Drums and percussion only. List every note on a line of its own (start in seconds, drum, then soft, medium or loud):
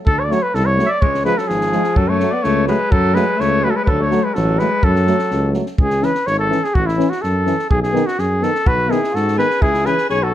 0.07 kick medium
0.32 snare soft
0.55 snare soft
0.79 snare soft
1.02 kick medium
1.15 snare soft
1.25 snare soft
1.38 snare soft
1.50 snare soft
1.61 snare soft
1.72 snare soft
1.84 snare soft
1.96 kick medium
2.20 snare soft
2.44 snare soft
2.68 snare soft
2.92 kick loud
3.16 snare soft
3.40 snare soft
3.87 kick medium
4.11 snare soft
4.35 snare soft
4.59 snare soft
4.83 kick medium
4.96 snare soft
5.07 snare soft
5.19 snare soft
5.31 snare soft
5.54 snare soft
5.66 snare soft
5.78 kick loud
5.90 snare soft
6.03 snare soft
6.15 snare soft
6.27 snare soft
6.52 snare soft
6.64 snare soft
6.75 kick medium
6.89 snare soft
7.00 snare soft
7.12 snare soft
7.24 snare soft
7.47 snare soft
7.59 snare soft
7.71 kick medium
7.84 snare soft
7.96 snare soft
8.08 snare soft
8.19 snare soft
8.43 snare soft
8.55 snare soft
8.66 kick loud
8.92 snare soft
9.04 snare soft
9.16 snare soft
9.28 snare soft
9.39 snare soft
9.50 snare soft
9.62 kick medium
9.74 snare soft
9.86 snare soft
9.98 snare soft
10.10 snare soft